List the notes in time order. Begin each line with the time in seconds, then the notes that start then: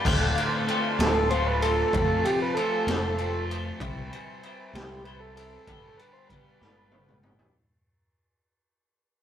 Already playing: D5 F5
0.05 D1 D2 A2 D3 A3 C4 F4 A5 C6, kick, crash
0.35 D3 A3 C4 F4, ride
0.67 D3 A3 C4 F4, ride
0.99 D1 D3 A3 C4 F4 A4, snare, ride
1.30 D3 A3 C4 F4 C5, ride
1.47 B4
1.62 D3 A3 C4 F4 A4, ride
1.93 F1 F2 C3 F3 A3 C4 F4 C5 A5 C6, kick, ride
2.25 F3 A3 C4 F4 G4, ride
2.42 B4
2.55 F3 A3 C4 F4 A4, ride
2.87 F1 F3 A3 C4 F4, snare, ride
3.18 F3 A3 C4 F4, ride
3.50 F3 A3 C4 F4, ride
3.80 C2 C3 G3 C4 E4 G4 C5 E5 G5 B5, kick, ride
4.13 C4 E4 G4 C5, ride
4.43 C4 E4 G4 C5, ride
4.73 C2 C4 E4 G4 C5, snare, ride
5.04 C4 E4 G4 B4 C5, ride
5.20 A4
5.36 C4 E4 G4 A4 C5, ride
5.65 G1 G2 D3 G3 B3 D5 F5, kick, ride
5.70 D4 G4
5.97 D4 G4 B4, ride
6.01 G3 B3
6.13 C5
6.27 G3 B4, kick, ride
6.32 B3 D4 G4
6.61 G1 G3 B3 D4 G4, snare
6.92 G3 B3 D4 G4, high tom
7.09 mid tom
7.23 G3 B3 D4 G4, mid tom
7.39 floor tom